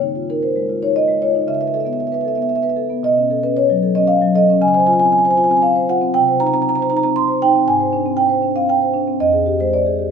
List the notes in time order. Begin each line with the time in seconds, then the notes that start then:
Already playing: C#3 C#5
0.02 D#4
0.15 F4
0.30 D#4 A#4
0.43 C5
0.56 G#3
0.69 F4
0.82 D#4 C#5
0.96 D#5
1.08 G#3
1.22 F4 C#5
1.35 D#4
1.48 C#3 E5
1.54 E5
1.61 B4 E5
1.67 E5
1.74 A4 E5
1.80 E5
1.85 B3 E5
1.93 E5
2.00 E5
2.07 E5
2.12 B4 E5
2.21 A4 E5
2.28 E5
2.35 B3 E5
2.42 E5
2.49 E5
2.55 E5
2.62 B4 E5
2.69 E5
2.76 A4
2.90 B3
3.03 B2 D#5
3.17 C#4
3.31 A4
3.43 C#4 B4
3.57 C#5
3.70 F#3
3.83 A4
3.95 C#4 D#5
4.07 F5
4.21 F#3
4.35 A4 D#5
4.50 C#4
4.62 C#3 G#5
4.68 G#5
4.74 C5 G#5
4.80 G#5
4.87 F4 G#5
4.93 G#5
4.99 C4 G#5
5.06 G#5
5.12 G#5
5.18 G#5
5.25 C5 G#5
5.31 G#5
5.37 F4 G#5
5.44 G#5
5.50 C4 G#5
5.57 G#5
5.62 F5
5.76 C5
5.89 F4 F#5
6.02 C4
6.14 C3 G5
6.28 C5
6.40 D#4 A#5
6.47 A#5
6.53 C4 A#5
6.62 A#5
6.69 A#5
6.75 C5 A#5
6.82 A#5
6.90 D#4 A#5
6.97 A#5
7.03 C4 A#5
7.16 C6
7.28 C5
7.42 D#4 G5
7.56 C4
7.67 G#2 G#5
7.80 C5
7.93 D4
8.06 C4
8.17 G5
8.29 C5
8.42 D4
8.56 C4 F5
8.69 G5
8.82 C5
8.94 D4
9.08 C4
9.20 F2 D#5
9.33 G#4
9.46 G4
9.60 G#3 C5
9.73 D5
9.86 G#4
9.99 G4